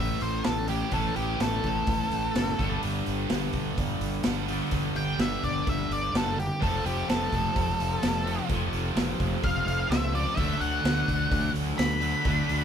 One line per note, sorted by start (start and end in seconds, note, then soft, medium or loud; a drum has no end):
0.00 0.15 A1 medium
0.00 0.22 A2 medium
0.00 0.67 A2 medium
0.00 0.68 E3 medium
0.00 0.68 A3 medium
0.00 0.45 C#4 medium
0.00 0.68 C#4 medium
0.00 0.67 E4 medium
0.00 1.17 E4 medium
0.00 0.22 E5 medium
0.21 0.40 A1 medium
0.21 1.41 A3 medium
0.21 0.45 C5 medium
0.21 open hi-hat medium
0.44 0.82 A1 medium
0.44 1.63 C#4 medium
0.44 0.68 A4 medium
0.44 snare loud
0.44 open hi-hat medium
0.68 0.90 A2 medium
0.68 1.88 E3 medium
0.68 0.91 E3 medium
0.68 0.92 A3 medium
0.68 0.92 C#4 medium
0.68 0.91 E4 medium
0.68 0.92 G4 medium
0.68 open hi-hat medium
0.91 1.10 A1 medium
0.91 2.57 A2 medium
0.91 2.12 A2 medium
0.91 2.57 E3 loud
0.91 2.58 A3 loud
0.91 2.58 C#4 medium
0.91 2.59 E4 loud
0.91 1.16 A4 medium
0.91 kick loud
0.91 open hi-hat medium
1.16 1.35 A1 medium
1.16 1.40 G4 medium
1.16 open hi-hat medium
1.40 1.58 A1 medium
1.40 1.87 E4 medium
1.40 2.80 A4 medium
1.40 snare loud
1.40 open hi-hat medium
1.64 1.82 A1 medium
1.64 2.34 C#4 medium
1.64 kick medium
1.64 open hi-hat medium
1.87 2.05 A1 medium
1.87 2.59 E4 medium
1.87 kick loud
1.87 open hi-hat medium
2.11 2.29 A1 medium
2.11 2.60 A3 medium
2.11 open hi-hat medium
2.35 2.53 F#1 loud
2.35 2.59 C#4 medium
2.35 snare loud
2.35 open hi-hat medium
2.49 snare soft
2.58 2.77 G1 medium
2.58 4.22 G2 medium
2.58 2.83 G2 medium
2.58 4.23 D3 medium
2.58 4.24 G3 medium
2.58 4.24 B3 medium
2.58 4.24 D4 loud
2.58 kick loud
2.58 open hi-hat medium
2.83 3.01 G1 medium
2.83 4.01 G2 medium
2.83 open hi-hat medium
3.06 3.25 G1 medium
3.06 open hi-hat medium
3.30 3.48 G1 medium
3.30 3.77 D4 medium
3.30 snare loud
3.30 open hi-hat medium
3.53 3.72 G1 medium
3.53 4.24 B3 medium
3.53 kick medium
3.53 open hi-hat medium
3.78 3.95 G1 medium
3.78 4.96 D4 medium
3.78 kick loud
3.78 open hi-hat medium
4.01 4.19 G1 medium
4.01 5.20 G3 medium
4.01 open hi-hat medium
4.23 4.61 G1 medium
4.23 4.46 G2 medium
4.23 4.47 D3 medium
4.23 4.47 G3 medium
4.23 5.41 B3 medium
4.23 4.48 B3 medium
4.23 4.48 D4 medium
4.23 snare loud
4.23 open hi-hat medium
4.47 6.12 G2 medium
4.47 6.12 D3 medium
4.47 5.67 D3 medium
4.47 6.13 G3 medium
4.47 6.13 B3 medium
4.47 6.13 D4 medium
4.47 open hi-hat medium
4.71 4.90 G1 medium
4.71 5.90 G2 medium
4.71 kick loud
4.71 open hi-hat medium
4.96 5.14 G1 medium
4.96 5.19 G5 medium
4.96 open hi-hat soft
5.18 5.36 G1 loud
5.18 5.65 D4 medium
5.18 5.43 E5 medium
5.18 snare loud
5.18 open hi-hat medium
5.43 5.61 G1 medium
5.43 6.12 B3 medium
5.43 5.67 D5 medium
5.43 kick medium
5.43 open hi-hat medium
5.66 5.85 G1 medium
5.66 6.61 D4 medium
5.66 5.91 E5 medium
5.66 kick loud
5.66 open hi-hat medium
5.90 6.08 G1 medium
5.90 6.61 G3 medium
5.90 6.14 D5 medium
5.90 open hi-hat medium
6.13 6.49 F#1 medium
6.13 6.36 G2 medium
6.13 6.37 D3 medium
6.13 6.37 G3 medium
6.13 6.61 B3 medium
6.13 6.38 A4 medium
6.13 snare loud
6.13 open hi-hat medium
6.17 6.38 B3 medium
6.17 6.38 D4 medium
6.36 6.61 D3 medium
6.36 6.62 G4 medium
6.36 open hi-hat medium
6.60 6.80 F1 medium
6.60 8.24 F2 medium
6.60 7.79 F2 medium
6.60 8.24 C3 medium
6.60 8.25 F3 medium
6.60 8.26 A3 loud
6.60 8.23 C4 loud
6.60 6.85 A4 medium
6.60 kick loud
6.60 open hi-hat medium
6.84 7.02 F1 medium
6.84 7.08 G4 medium
6.84 open hi-hat medium
7.08 7.26 F1 medium
7.08 7.52 C4 medium
7.08 8.46 A4 medium
7.08 snare loud
7.08 open hi-hat medium
7.31 7.50 F1 medium
7.31 8.01 A3 medium
7.31 kick medium
7.31 open hi-hat medium
7.53 7.74 F1 medium
7.53 8.72 C4 medium
7.53 kick loud
7.53 open hi-hat medium
7.78 7.97 F1 medium
7.78 8.96 F3 medium
7.78 open hi-hat medium
8.02 8.38 F1 medium
8.02 9.19 A3 medium
8.02 snare loud
8.02 open hi-hat medium
8.25 8.47 F2 medium
8.25 9.43 C3 medium
8.25 8.48 C3 medium
8.25 8.48 F3 medium
8.25 8.50 A3 medium
8.25 8.48 C4 medium
8.25 open hi-hat medium
8.48 8.67 F1 medium
8.48 10.12 F2 medium
8.48 9.67 F2 medium
8.48 10.12 C3 medium
8.48 10.13 F3 loud
8.48 10.13 A3 loud
8.48 10.11 C4 medium
8.48 kick loud
8.48 open hi-hat medium
8.73 8.90 F1 medium
8.73 open hi-hat medium
8.95 9.13 F1 medium
8.95 9.41 C4 medium
8.95 snare loud
8.95 open hi-hat medium
9.19 9.37 F1 medium
9.19 9.89 A3 medium
9.19 kick medium
9.19 open hi-hat medium
9.42 9.61 F1 medium
9.42 10.37 C4 medium
9.42 9.66 F5 medium
9.42 kick loud
9.42 open hi-hat medium
9.66 9.84 F1 medium
9.66 10.37 F3 medium
9.66 9.90 F5 medium
9.66 open hi-hat medium
9.89 10.25 C#2 medium
9.89 11.06 A3 medium
9.89 10.13 E5 loud
9.89 snare loud
9.89 open hi-hat medium
10.12 10.37 F2 medium
10.12 10.35 C3 medium
10.12 10.36 C3 medium
10.12 10.36 F3 medium
10.12 10.38 A3 medium
10.12 10.35 C4 medium
10.12 10.37 D5 medium
10.12 open hi-hat medium
10.36 10.55 D2 medium
10.36 11.54 D3 medium
10.36 12.00 D3 medium
10.36 12.02 F#3 medium
10.36 12.00 A3 medium
10.36 12.00 D4 loud
10.36 10.60 E5 medium
10.36 kick loud
10.36 open hi-hat medium
10.60 10.78 D2 medium
10.60 11.52 F#5 loud
10.60 open hi-hat medium
10.83 11.02 D2 medium
10.83 11.30 D4 medium
10.83 snare loud
10.83 open hi-hat medium
11.07 11.26 D2 medium
11.07 11.76 A3 medium
11.07 kick medium
11.07 open hi-hat medium
11.30 11.49 D2 medium
11.30 12.48 D4 medium
11.30 kick loud
11.30 open hi-hat medium
11.54 11.72 D2 medium
11.54 12.64 F#3 medium
11.54 open hi-hat medium
11.77 12.13 D2 loud
11.77 12.64 A3 medium
11.77 12.64 B5 loud
11.77 snare loud
11.77 open hi-hat medium
11.91 snare soft
12.00 12.23 D3 medium
12.00 12.22 D3 medium
12.00 12.24 F#3 medium
12.00 12.24 A3 medium
12.00 12.25 D4 medium
12.00 open hi-hat medium
12.23 12.43 D2 medium
12.23 12.64 D3 loud
12.23 12.64 D3 medium
12.23 12.64 F#3 medium
12.23 12.64 A3 medium
12.23 12.64 D4 loud
12.23 kick loud
12.23 open hi-hat medium
12.49 12.64 D2 medium
12.49 open hi-hat medium